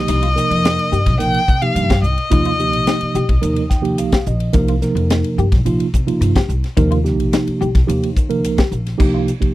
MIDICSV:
0, 0, Header, 1, 7, 480
1, 0, Start_track
1, 0, Tempo, 557103
1, 71, Time_signature, 4, 2, 24, 8
1, 8222, End_track
2, 0, Start_track
2, 0, Title_t, "Violin"
2, 0, Program_c, 0, 40
2, 0, Note_on_c, 0, 75, 97
2, 1008, Note_off_c, 0, 75, 0
2, 1033, Note_on_c, 0, 79, 100
2, 1394, Note_on_c, 0, 77, 91
2, 1407, Note_off_c, 0, 79, 0
2, 1744, Note_off_c, 0, 77, 0
2, 1750, Note_on_c, 0, 75, 94
2, 3155, Note_off_c, 0, 75, 0
2, 8222, End_track
3, 0, Start_track
3, 0, Title_t, "Clean electric guitar"
3, 0, Program_c, 1, 27
3, 75, Note_on_c, 1, 63, 79
3, 150, Note_off_c, 1, 63, 0
3, 196, Note_on_c, 1, 65, 55
3, 346, Note_off_c, 1, 65, 0
3, 557, Note_on_c, 1, 63, 76
3, 707, Note_off_c, 1, 63, 0
3, 793, Note_on_c, 1, 67, 75
3, 944, Note_off_c, 1, 67, 0
3, 1639, Note_on_c, 1, 67, 61
3, 1788, Note_off_c, 1, 67, 0
3, 1997, Note_on_c, 1, 63, 83
3, 2071, Note_off_c, 1, 63, 0
3, 2116, Note_on_c, 1, 65, 57
3, 2266, Note_off_c, 1, 65, 0
3, 2474, Note_on_c, 1, 63, 79
3, 2625, Note_off_c, 1, 63, 0
3, 2717, Note_on_c, 1, 67, 77
3, 2867, Note_off_c, 1, 67, 0
3, 3561, Note_on_c, 1, 67, 66
3, 3710, Note_off_c, 1, 67, 0
3, 3917, Note_on_c, 1, 63, 91
3, 3991, Note_off_c, 1, 63, 0
3, 4039, Note_on_c, 1, 65, 57
3, 4188, Note_off_c, 1, 65, 0
3, 4403, Note_on_c, 1, 63, 80
3, 4551, Note_off_c, 1, 63, 0
3, 4639, Note_on_c, 1, 67, 81
3, 4788, Note_off_c, 1, 67, 0
3, 5480, Note_on_c, 1, 67, 68
3, 5629, Note_off_c, 1, 67, 0
3, 5831, Note_on_c, 1, 63, 83
3, 5907, Note_off_c, 1, 63, 0
3, 5952, Note_on_c, 1, 65, 62
3, 6104, Note_off_c, 1, 65, 0
3, 6317, Note_on_c, 1, 63, 77
3, 6467, Note_off_c, 1, 63, 0
3, 6555, Note_on_c, 1, 67, 75
3, 6706, Note_off_c, 1, 67, 0
3, 7397, Note_on_c, 1, 67, 68
3, 7547, Note_off_c, 1, 67, 0
3, 7754, Note_on_c, 1, 63, 83
3, 7829, Note_off_c, 1, 63, 0
3, 7877, Note_on_c, 1, 65, 61
3, 8028, Note_off_c, 1, 65, 0
3, 8222, End_track
4, 0, Start_track
4, 0, Title_t, "Tine electric piano"
4, 0, Program_c, 2, 4
4, 0, Note_on_c, 2, 48, 66
4, 0, Note_on_c, 2, 53, 61
4, 0, Note_on_c, 2, 58, 66
4, 0, Note_on_c, 2, 63, 63
4, 0, Note_on_c, 2, 67, 85
4, 210, Note_off_c, 2, 48, 0
4, 210, Note_off_c, 2, 53, 0
4, 211, Note_off_c, 2, 58, 0
4, 211, Note_off_c, 2, 63, 0
4, 212, Note_off_c, 2, 67, 0
4, 305, Note_on_c, 2, 53, 61
4, 305, Note_on_c, 2, 58, 61
4, 308, Note_on_c, 2, 48, 72
4, 311, Note_on_c, 2, 70, 75
4, 312, Note_on_c, 2, 63, 62
4, 844, Note_off_c, 2, 53, 0
4, 844, Note_off_c, 2, 58, 0
4, 846, Note_off_c, 2, 48, 0
4, 847, Note_off_c, 2, 70, 0
4, 848, Note_off_c, 2, 63, 0
4, 1022, Note_on_c, 2, 48, 74
4, 1027, Note_on_c, 2, 53, 66
4, 1027, Note_on_c, 2, 58, 67
4, 1027, Note_on_c, 2, 63, 63
4, 1027, Note_on_c, 2, 70, 74
4, 1205, Note_off_c, 2, 48, 0
4, 1207, Note_off_c, 2, 53, 0
4, 1207, Note_off_c, 2, 70, 0
4, 1208, Note_off_c, 2, 58, 0
4, 1208, Note_off_c, 2, 63, 0
4, 1393, Note_on_c, 2, 48, 72
4, 1396, Note_on_c, 2, 53, 61
4, 1396, Note_on_c, 2, 58, 61
4, 1398, Note_on_c, 2, 63, 60
4, 1401, Note_on_c, 2, 67, 71
4, 1660, Note_off_c, 2, 48, 0
4, 1661, Note_off_c, 2, 58, 0
4, 1662, Note_off_c, 2, 53, 0
4, 1663, Note_off_c, 2, 63, 0
4, 1664, Note_off_c, 2, 67, 0
4, 1749, Note_on_c, 2, 63, 28
4, 1752, Note_on_c, 2, 67, 27
4, 1807, Note_off_c, 2, 63, 0
4, 1808, Note_off_c, 2, 67, 0
4, 1985, Note_on_c, 2, 58, 80
4, 1988, Note_on_c, 2, 53, 79
4, 1989, Note_on_c, 2, 65, 98
4, 1990, Note_on_c, 2, 48, 93
4, 1991, Note_on_c, 2, 63, 79
4, 2166, Note_off_c, 2, 58, 0
4, 2168, Note_off_c, 2, 53, 0
4, 2168, Note_off_c, 2, 65, 0
4, 2169, Note_off_c, 2, 48, 0
4, 2169, Note_off_c, 2, 63, 0
4, 2234, Note_on_c, 2, 48, 67
4, 2237, Note_on_c, 2, 63, 60
4, 2238, Note_on_c, 2, 67, 67
4, 2239, Note_on_c, 2, 53, 59
4, 2239, Note_on_c, 2, 58, 61
4, 2768, Note_off_c, 2, 48, 0
4, 2770, Note_off_c, 2, 63, 0
4, 2771, Note_off_c, 2, 53, 0
4, 2771, Note_off_c, 2, 58, 0
4, 2771, Note_off_c, 2, 67, 0
4, 2942, Note_on_c, 2, 48, 76
4, 2942, Note_on_c, 2, 53, 71
4, 2943, Note_on_c, 2, 58, 70
4, 2943, Note_on_c, 2, 70, 84
4, 2945, Note_on_c, 2, 63, 77
4, 3125, Note_off_c, 2, 48, 0
4, 3125, Note_off_c, 2, 53, 0
4, 3125, Note_off_c, 2, 58, 0
4, 3125, Note_off_c, 2, 70, 0
4, 3126, Note_off_c, 2, 63, 0
4, 3186, Note_on_c, 2, 63, 30
4, 3186, Note_on_c, 2, 79, 65
4, 3191, Note_on_c, 2, 67, 31
4, 3246, Note_off_c, 2, 63, 0
4, 3248, Note_off_c, 2, 67, 0
4, 3290, Note_on_c, 2, 48, 84
4, 3290, Note_on_c, 2, 53, 81
4, 3294, Note_on_c, 2, 58, 77
4, 3295, Note_on_c, 2, 63, 78
4, 3297, Note_on_c, 2, 67, 90
4, 3411, Note_off_c, 2, 79, 0
4, 3436, Note_on_c, 2, 77, 67
4, 3568, Note_off_c, 2, 48, 0
4, 3568, Note_off_c, 2, 53, 0
4, 3570, Note_off_c, 2, 58, 0
4, 3571, Note_off_c, 2, 63, 0
4, 3572, Note_off_c, 2, 67, 0
4, 3656, Note_off_c, 2, 77, 0
4, 3681, Note_on_c, 2, 63, 30
4, 3681, Note_on_c, 2, 75, 71
4, 3685, Note_on_c, 2, 67, 35
4, 3733, Note_off_c, 2, 63, 0
4, 3735, Note_off_c, 2, 67, 0
4, 3899, Note_off_c, 2, 75, 0
4, 3901, Note_on_c, 2, 48, 99
4, 3903, Note_on_c, 2, 58, 96
4, 3905, Note_on_c, 2, 53, 96
4, 3907, Note_on_c, 2, 63, 95
4, 3907, Note_on_c, 2, 70, 107
4, 4084, Note_off_c, 2, 48, 0
4, 4086, Note_off_c, 2, 53, 0
4, 4086, Note_off_c, 2, 58, 0
4, 4087, Note_off_c, 2, 70, 0
4, 4088, Note_off_c, 2, 63, 0
4, 4152, Note_on_c, 2, 48, 79
4, 4154, Note_on_c, 2, 53, 78
4, 4154, Note_on_c, 2, 70, 88
4, 4157, Note_on_c, 2, 58, 73
4, 4159, Note_on_c, 2, 63, 70
4, 4688, Note_off_c, 2, 48, 0
4, 4689, Note_off_c, 2, 53, 0
4, 4689, Note_off_c, 2, 70, 0
4, 4691, Note_off_c, 2, 58, 0
4, 4691, Note_off_c, 2, 63, 0
4, 4870, Note_on_c, 2, 53, 73
4, 4873, Note_on_c, 2, 48, 87
4, 4873, Note_on_c, 2, 58, 71
4, 4874, Note_on_c, 2, 65, 91
4, 4876, Note_on_c, 2, 63, 78
4, 5049, Note_off_c, 2, 53, 0
4, 5050, Note_off_c, 2, 48, 0
4, 5051, Note_off_c, 2, 58, 0
4, 5051, Note_off_c, 2, 65, 0
4, 5052, Note_off_c, 2, 63, 0
4, 5109, Note_on_c, 2, 63, 29
4, 5113, Note_on_c, 2, 67, 31
4, 5167, Note_off_c, 2, 63, 0
4, 5169, Note_off_c, 2, 67, 0
4, 5226, Note_on_c, 2, 48, 89
4, 5227, Note_on_c, 2, 53, 71
4, 5230, Note_on_c, 2, 63, 80
4, 5232, Note_on_c, 2, 58, 77
4, 5235, Note_on_c, 2, 65, 86
4, 5497, Note_off_c, 2, 48, 0
4, 5497, Note_off_c, 2, 53, 0
4, 5498, Note_off_c, 2, 63, 0
4, 5500, Note_off_c, 2, 58, 0
4, 5501, Note_off_c, 2, 65, 0
4, 5593, Note_on_c, 2, 63, 33
4, 5602, Note_on_c, 2, 67, 34
4, 5649, Note_off_c, 2, 63, 0
4, 5654, Note_off_c, 2, 67, 0
4, 5833, Note_on_c, 2, 70, 110
4, 5834, Note_on_c, 2, 48, 111
4, 5834, Note_on_c, 2, 53, 99
4, 5834, Note_on_c, 2, 58, 98
4, 5834, Note_on_c, 2, 63, 94
4, 6011, Note_off_c, 2, 48, 0
4, 6011, Note_off_c, 2, 53, 0
4, 6011, Note_off_c, 2, 58, 0
4, 6011, Note_off_c, 2, 63, 0
4, 6011, Note_off_c, 2, 70, 0
4, 6062, Note_on_c, 2, 53, 69
4, 6064, Note_on_c, 2, 48, 77
4, 6066, Note_on_c, 2, 58, 72
4, 6067, Note_on_c, 2, 63, 75
4, 6068, Note_on_c, 2, 67, 90
4, 6603, Note_off_c, 2, 53, 0
4, 6604, Note_off_c, 2, 48, 0
4, 6605, Note_off_c, 2, 58, 0
4, 6606, Note_off_c, 2, 63, 0
4, 6606, Note_off_c, 2, 67, 0
4, 6782, Note_on_c, 2, 48, 81
4, 6783, Note_on_c, 2, 53, 69
4, 6783, Note_on_c, 2, 67, 97
4, 6786, Note_on_c, 2, 58, 75
4, 6786, Note_on_c, 2, 63, 74
4, 6966, Note_off_c, 2, 48, 0
4, 6966, Note_off_c, 2, 53, 0
4, 6966, Note_off_c, 2, 67, 0
4, 6967, Note_off_c, 2, 58, 0
4, 6968, Note_off_c, 2, 63, 0
4, 7032, Note_on_c, 2, 70, 31
4, 7034, Note_on_c, 2, 63, 30
4, 7089, Note_off_c, 2, 70, 0
4, 7090, Note_off_c, 2, 63, 0
4, 7147, Note_on_c, 2, 63, 78
4, 7148, Note_on_c, 2, 48, 82
4, 7149, Note_on_c, 2, 58, 81
4, 7149, Note_on_c, 2, 70, 98
4, 7151, Note_on_c, 2, 53, 78
4, 7417, Note_off_c, 2, 63, 0
4, 7418, Note_off_c, 2, 48, 0
4, 7419, Note_off_c, 2, 53, 0
4, 7419, Note_off_c, 2, 58, 0
4, 7419, Note_off_c, 2, 70, 0
4, 7513, Note_on_c, 2, 63, 34
4, 7513, Note_on_c, 2, 70, 34
4, 7570, Note_off_c, 2, 63, 0
4, 7570, Note_off_c, 2, 70, 0
4, 7736, Note_on_c, 2, 53, 90
4, 7736, Note_on_c, 2, 63, 94
4, 7739, Note_on_c, 2, 67, 112
4, 7740, Note_on_c, 2, 48, 105
4, 7740, Note_on_c, 2, 58, 90
4, 8012, Note_off_c, 2, 53, 0
4, 8012, Note_off_c, 2, 63, 0
4, 8014, Note_off_c, 2, 58, 0
4, 8014, Note_off_c, 2, 67, 0
4, 8015, Note_off_c, 2, 48, 0
4, 8099, Note_on_c, 2, 53, 59
4, 8100, Note_on_c, 2, 48, 65
4, 8101, Note_on_c, 2, 58, 63
4, 8102, Note_on_c, 2, 63, 55
4, 8108, Note_on_c, 2, 67, 68
4, 8222, Note_off_c, 2, 48, 0
4, 8222, Note_off_c, 2, 53, 0
4, 8222, Note_off_c, 2, 58, 0
4, 8222, Note_off_c, 2, 63, 0
4, 8222, Note_off_c, 2, 67, 0
4, 8222, End_track
5, 0, Start_track
5, 0, Title_t, "Upright bass"
5, 0, Program_c, 3, 32
5, 74, Note_on_c, 3, 36, 78
5, 294, Note_off_c, 3, 36, 0
5, 433, Note_on_c, 3, 41, 75
5, 653, Note_off_c, 3, 41, 0
5, 796, Note_on_c, 3, 43, 77
5, 919, Note_on_c, 3, 36, 79
5, 932, Note_off_c, 3, 43, 0
5, 1025, Note_off_c, 3, 36, 0
5, 1042, Note_on_c, 3, 34, 71
5, 1148, Note_off_c, 3, 34, 0
5, 1279, Note_on_c, 3, 48, 83
5, 1386, Note_off_c, 3, 48, 0
5, 1509, Note_on_c, 3, 43, 90
5, 1731, Note_off_c, 3, 43, 0
5, 1745, Note_on_c, 3, 36, 81
5, 1859, Note_off_c, 3, 36, 0
5, 1998, Note_on_c, 3, 39, 90
5, 2348, Note_off_c, 3, 39, 0
5, 2348, Note_on_c, 3, 34, 82
5, 2459, Note_off_c, 3, 34, 0
5, 2712, Note_on_c, 3, 36, 72
5, 2822, Note_off_c, 3, 36, 0
5, 2838, Note_on_c, 3, 36, 75
5, 2945, Note_off_c, 3, 36, 0
5, 2950, Note_on_c, 3, 39, 89
5, 3439, Note_off_c, 3, 39, 0
5, 3439, Note_on_c, 3, 36, 77
5, 3657, Note_off_c, 3, 36, 0
5, 3676, Note_on_c, 3, 34, 77
5, 3895, Note_off_c, 3, 34, 0
5, 3914, Note_on_c, 3, 36, 86
5, 4134, Note_off_c, 3, 36, 0
5, 4266, Note_on_c, 3, 41, 87
5, 4490, Note_off_c, 3, 41, 0
5, 4635, Note_on_c, 3, 43, 79
5, 4759, Note_on_c, 3, 36, 84
5, 4772, Note_off_c, 3, 43, 0
5, 4865, Note_off_c, 3, 36, 0
5, 4873, Note_on_c, 3, 34, 81
5, 4983, Note_off_c, 3, 34, 0
5, 5122, Note_on_c, 3, 48, 73
5, 5224, Note_off_c, 3, 48, 0
5, 5350, Note_on_c, 3, 43, 95
5, 5572, Note_off_c, 3, 43, 0
5, 5590, Note_on_c, 3, 36, 82
5, 5701, Note_off_c, 3, 36, 0
5, 5836, Note_on_c, 3, 39, 90
5, 6193, Note_off_c, 3, 39, 0
5, 6193, Note_on_c, 3, 34, 80
5, 6302, Note_off_c, 3, 34, 0
5, 6559, Note_on_c, 3, 36, 82
5, 6666, Note_off_c, 3, 36, 0
5, 6678, Note_on_c, 3, 36, 80
5, 6785, Note_off_c, 3, 36, 0
5, 6792, Note_on_c, 3, 39, 89
5, 7271, Note_off_c, 3, 39, 0
5, 7271, Note_on_c, 3, 36, 86
5, 7493, Note_off_c, 3, 36, 0
5, 7509, Note_on_c, 3, 34, 76
5, 7732, Note_off_c, 3, 34, 0
5, 7751, Note_on_c, 3, 36, 82
5, 7973, Note_off_c, 3, 36, 0
5, 8222, End_track
6, 0, Start_track
6, 0, Title_t, "Muted upright bass strokes"
6, 1403, Note_on_c, 9, 29, 35
6, 1489, Note_off_c, 9, 29, 0
6, 2596, Note_on_c, 9, 29, 38
6, 2682, Note_off_c, 9, 29, 0
6, 5229, Note_on_c, 9, 29, 37
6, 5315, Note_off_c, 9, 29, 0
6, 6440, Note_on_c, 9, 29, 35
6, 6526, Note_off_c, 9, 29, 0
6, 8222, End_track
7, 0, Start_track
7, 0, Title_t, "Drums"
7, 70, Note_on_c, 9, 44, 76
7, 70, Note_on_c, 9, 51, 78
7, 70, Note_on_c, 9, 55, 76
7, 156, Note_off_c, 9, 44, 0
7, 156, Note_off_c, 9, 51, 0
7, 156, Note_off_c, 9, 55, 0
7, 195, Note_on_c, 9, 51, 60
7, 281, Note_off_c, 9, 51, 0
7, 319, Note_on_c, 9, 44, 81
7, 405, Note_off_c, 9, 44, 0
7, 442, Note_on_c, 9, 51, 59
7, 528, Note_off_c, 9, 51, 0
7, 561, Note_on_c, 9, 44, 75
7, 561, Note_on_c, 9, 51, 72
7, 566, Note_on_c, 9, 38, 100
7, 647, Note_off_c, 9, 44, 0
7, 647, Note_off_c, 9, 51, 0
7, 652, Note_off_c, 9, 38, 0
7, 681, Note_on_c, 9, 51, 57
7, 767, Note_off_c, 9, 51, 0
7, 796, Note_on_c, 9, 44, 78
7, 882, Note_off_c, 9, 44, 0
7, 916, Note_on_c, 9, 36, 81
7, 916, Note_on_c, 9, 51, 59
7, 921, Note_on_c, 9, 38, 30
7, 1002, Note_off_c, 9, 36, 0
7, 1002, Note_off_c, 9, 51, 0
7, 1008, Note_off_c, 9, 38, 0
7, 1035, Note_on_c, 9, 44, 75
7, 1035, Note_on_c, 9, 51, 72
7, 1121, Note_off_c, 9, 44, 0
7, 1121, Note_off_c, 9, 51, 0
7, 1158, Note_on_c, 9, 51, 56
7, 1244, Note_off_c, 9, 51, 0
7, 1277, Note_on_c, 9, 36, 72
7, 1279, Note_on_c, 9, 44, 70
7, 1363, Note_off_c, 9, 36, 0
7, 1365, Note_off_c, 9, 44, 0
7, 1397, Note_on_c, 9, 51, 52
7, 1483, Note_off_c, 9, 51, 0
7, 1516, Note_on_c, 9, 44, 76
7, 1516, Note_on_c, 9, 51, 74
7, 1603, Note_off_c, 9, 44, 0
7, 1603, Note_off_c, 9, 51, 0
7, 1637, Note_on_c, 9, 36, 78
7, 1639, Note_on_c, 9, 51, 55
7, 1644, Note_on_c, 9, 38, 92
7, 1724, Note_off_c, 9, 36, 0
7, 1725, Note_off_c, 9, 51, 0
7, 1730, Note_off_c, 9, 38, 0
7, 1755, Note_on_c, 9, 44, 82
7, 1841, Note_off_c, 9, 44, 0
7, 1876, Note_on_c, 9, 51, 52
7, 1962, Note_off_c, 9, 51, 0
7, 1993, Note_on_c, 9, 44, 78
7, 1993, Note_on_c, 9, 51, 82
7, 1995, Note_on_c, 9, 36, 98
7, 2080, Note_off_c, 9, 44, 0
7, 2080, Note_off_c, 9, 51, 0
7, 2081, Note_off_c, 9, 36, 0
7, 2113, Note_on_c, 9, 51, 59
7, 2199, Note_off_c, 9, 51, 0
7, 2234, Note_on_c, 9, 44, 74
7, 2321, Note_off_c, 9, 44, 0
7, 2354, Note_on_c, 9, 51, 64
7, 2440, Note_off_c, 9, 51, 0
7, 2473, Note_on_c, 9, 44, 73
7, 2473, Note_on_c, 9, 51, 72
7, 2478, Note_on_c, 9, 38, 101
7, 2559, Note_off_c, 9, 44, 0
7, 2559, Note_off_c, 9, 51, 0
7, 2564, Note_off_c, 9, 38, 0
7, 2591, Note_on_c, 9, 51, 58
7, 2677, Note_off_c, 9, 51, 0
7, 2712, Note_on_c, 9, 44, 84
7, 2798, Note_off_c, 9, 44, 0
7, 2834, Note_on_c, 9, 51, 61
7, 2835, Note_on_c, 9, 36, 78
7, 2920, Note_off_c, 9, 51, 0
7, 2921, Note_off_c, 9, 36, 0
7, 2953, Note_on_c, 9, 44, 79
7, 2953, Note_on_c, 9, 51, 79
7, 3039, Note_off_c, 9, 44, 0
7, 3039, Note_off_c, 9, 51, 0
7, 3069, Note_on_c, 9, 51, 60
7, 3156, Note_off_c, 9, 51, 0
7, 3194, Note_on_c, 9, 36, 68
7, 3194, Note_on_c, 9, 44, 84
7, 3199, Note_on_c, 9, 38, 26
7, 3280, Note_off_c, 9, 36, 0
7, 3280, Note_off_c, 9, 44, 0
7, 3285, Note_off_c, 9, 38, 0
7, 3316, Note_on_c, 9, 51, 61
7, 3402, Note_off_c, 9, 51, 0
7, 3430, Note_on_c, 9, 44, 75
7, 3430, Note_on_c, 9, 51, 78
7, 3516, Note_off_c, 9, 44, 0
7, 3516, Note_off_c, 9, 51, 0
7, 3552, Note_on_c, 9, 51, 54
7, 3555, Note_on_c, 9, 36, 71
7, 3557, Note_on_c, 9, 38, 109
7, 3638, Note_off_c, 9, 51, 0
7, 3641, Note_off_c, 9, 36, 0
7, 3643, Note_off_c, 9, 38, 0
7, 3673, Note_on_c, 9, 44, 81
7, 3759, Note_off_c, 9, 44, 0
7, 3792, Note_on_c, 9, 51, 59
7, 3878, Note_off_c, 9, 51, 0
7, 3905, Note_on_c, 9, 44, 72
7, 3905, Note_on_c, 9, 51, 75
7, 3912, Note_on_c, 9, 36, 98
7, 3991, Note_off_c, 9, 44, 0
7, 3991, Note_off_c, 9, 51, 0
7, 3999, Note_off_c, 9, 36, 0
7, 4034, Note_on_c, 9, 51, 66
7, 4120, Note_off_c, 9, 51, 0
7, 4153, Note_on_c, 9, 44, 78
7, 4158, Note_on_c, 9, 38, 28
7, 4239, Note_off_c, 9, 44, 0
7, 4244, Note_off_c, 9, 38, 0
7, 4278, Note_on_c, 9, 51, 60
7, 4364, Note_off_c, 9, 51, 0
7, 4396, Note_on_c, 9, 44, 81
7, 4396, Note_on_c, 9, 51, 75
7, 4401, Note_on_c, 9, 38, 101
7, 4482, Note_off_c, 9, 44, 0
7, 4482, Note_off_c, 9, 51, 0
7, 4487, Note_off_c, 9, 38, 0
7, 4517, Note_on_c, 9, 51, 62
7, 4603, Note_off_c, 9, 51, 0
7, 4636, Note_on_c, 9, 44, 77
7, 4722, Note_off_c, 9, 44, 0
7, 4756, Note_on_c, 9, 36, 86
7, 4759, Note_on_c, 9, 51, 60
7, 4764, Note_on_c, 9, 38, 30
7, 4842, Note_off_c, 9, 36, 0
7, 4845, Note_off_c, 9, 51, 0
7, 4850, Note_off_c, 9, 38, 0
7, 4876, Note_on_c, 9, 44, 76
7, 4876, Note_on_c, 9, 51, 75
7, 4962, Note_off_c, 9, 44, 0
7, 4962, Note_off_c, 9, 51, 0
7, 4998, Note_on_c, 9, 51, 57
7, 5084, Note_off_c, 9, 51, 0
7, 5116, Note_on_c, 9, 36, 71
7, 5120, Note_on_c, 9, 44, 82
7, 5202, Note_off_c, 9, 36, 0
7, 5206, Note_off_c, 9, 44, 0
7, 5239, Note_on_c, 9, 51, 57
7, 5325, Note_off_c, 9, 51, 0
7, 5356, Note_on_c, 9, 44, 78
7, 5356, Note_on_c, 9, 51, 76
7, 5442, Note_off_c, 9, 44, 0
7, 5442, Note_off_c, 9, 51, 0
7, 5476, Note_on_c, 9, 36, 81
7, 5478, Note_on_c, 9, 51, 54
7, 5483, Note_on_c, 9, 38, 101
7, 5562, Note_off_c, 9, 36, 0
7, 5564, Note_off_c, 9, 51, 0
7, 5569, Note_off_c, 9, 38, 0
7, 5594, Note_on_c, 9, 44, 83
7, 5681, Note_off_c, 9, 44, 0
7, 5720, Note_on_c, 9, 51, 49
7, 5725, Note_on_c, 9, 38, 30
7, 5806, Note_off_c, 9, 51, 0
7, 5811, Note_off_c, 9, 38, 0
7, 5833, Note_on_c, 9, 44, 85
7, 5833, Note_on_c, 9, 51, 72
7, 5835, Note_on_c, 9, 36, 110
7, 5920, Note_off_c, 9, 44, 0
7, 5920, Note_off_c, 9, 51, 0
7, 5921, Note_off_c, 9, 36, 0
7, 5959, Note_on_c, 9, 51, 62
7, 6045, Note_off_c, 9, 51, 0
7, 6081, Note_on_c, 9, 44, 76
7, 6086, Note_on_c, 9, 38, 28
7, 6167, Note_off_c, 9, 44, 0
7, 6172, Note_off_c, 9, 38, 0
7, 6202, Note_on_c, 9, 51, 58
7, 6288, Note_off_c, 9, 51, 0
7, 6315, Note_on_c, 9, 44, 82
7, 6315, Note_on_c, 9, 51, 76
7, 6321, Note_on_c, 9, 38, 102
7, 6402, Note_off_c, 9, 44, 0
7, 6402, Note_off_c, 9, 51, 0
7, 6407, Note_off_c, 9, 38, 0
7, 6440, Note_on_c, 9, 51, 56
7, 6526, Note_off_c, 9, 51, 0
7, 6561, Note_on_c, 9, 44, 76
7, 6647, Note_off_c, 9, 44, 0
7, 6677, Note_on_c, 9, 36, 86
7, 6679, Note_on_c, 9, 51, 62
7, 6684, Note_on_c, 9, 38, 32
7, 6763, Note_off_c, 9, 36, 0
7, 6765, Note_off_c, 9, 51, 0
7, 6770, Note_off_c, 9, 38, 0
7, 6802, Note_on_c, 9, 44, 81
7, 6802, Note_on_c, 9, 51, 80
7, 6888, Note_off_c, 9, 44, 0
7, 6888, Note_off_c, 9, 51, 0
7, 6922, Note_on_c, 9, 51, 59
7, 7009, Note_off_c, 9, 51, 0
7, 7035, Note_on_c, 9, 36, 76
7, 7037, Note_on_c, 9, 44, 78
7, 7121, Note_off_c, 9, 36, 0
7, 7123, Note_off_c, 9, 44, 0
7, 7155, Note_on_c, 9, 51, 61
7, 7241, Note_off_c, 9, 51, 0
7, 7276, Note_on_c, 9, 44, 80
7, 7276, Note_on_c, 9, 51, 79
7, 7362, Note_off_c, 9, 44, 0
7, 7362, Note_off_c, 9, 51, 0
7, 7393, Note_on_c, 9, 51, 58
7, 7395, Note_on_c, 9, 36, 75
7, 7398, Note_on_c, 9, 38, 102
7, 7479, Note_off_c, 9, 51, 0
7, 7481, Note_off_c, 9, 36, 0
7, 7484, Note_off_c, 9, 38, 0
7, 7511, Note_on_c, 9, 44, 80
7, 7597, Note_off_c, 9, 44, 0
7, 7638, Note_on_c, 9, 51, 61
7, 7643, Note_on_c, 9, 38, 29
7, 7724, Note_off_c, 9, 51, 0
7, 7729, Note_off_c, 9, 38, 0
7, 7753, Note_on_c, 9, 36, 102
7, 7755, Note_on_c, 9, 49, 91
7, 7840, Note_off_c, 9, 36, 0
7, 7842, Note_off_c, 9, 49, 0
7, 7996, Note_on_c, 9, 44, 78
7, 7996, Note_on_c, 9, 51, 58
7, 8082, Note_off_c, 9, 44, 0
7, 8082, Note_off_c, 9, 51, 0
7, 8114, Note_on_c, 9, 36, 69
7, 8118, Note_on_c, 9, 51, 52
7, 8201, Note_off_c, 9, 36, 0
7, 8204, Note_off_c, 9, 51, 0
7, 8222, End_track
0, 0, End_of_file